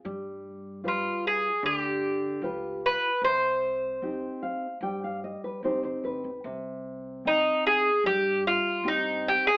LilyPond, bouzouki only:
\new Staff \with { instrumentName = "Bouzouki" } { \time 4/4 \key c \minor \tempo 4 = 75 r4 f'8 aes'8 g'4. b'8 | c''2. r4 | r4 ees'8 aes'8 g'8 f'8 ees'8 g'16 aes'16 | }